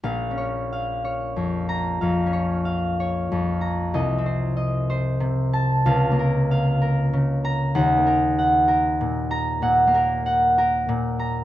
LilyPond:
<<
  \new Staff \with { instrumentName = "Harp" } { \time 4/4 \key bes \minor \tempo 4 = 63 << { r4 \tuplet 3/2 { r4 bes''8~ } bes''2 | r4 \tuplet 3/2 { r4 a''8 } r4 \tuplet 3/2 { r4 bes''8~ } | bes''4~ \tuplet 3/2 { bes''4 bes''8~ } bes''2 | } \\ { \tuplet 3/2 { f''8 des''8 f''8 des''8 f,4 f''8 des''8 f''8 des''8 f,8 bes''8 } | \tuplet 3/2 { ees''8 c''8 ees''8 c''8 c4 f''8 bes'8 f''8 bes'8 des4 } | \tuplet 3/2 { ges''8 bes'8 ges''8 bes'8 bes,4 ges''8 bes'8 ges''8 bes'8 bes,8 bes''8 } | } >> }
  \new Staff \with { instrumentName = "Harp" } { \clef bass \time 4/4 \key bes \minor bes,,16 des'4.~ des'16 f,16 des'4.~ des'16 | c,16 c'4.~ c'16 des,16 bes4.~ bes16 | ees,16 bes4.~ bes16 bes,16 bes4.~ bes16 | }
>>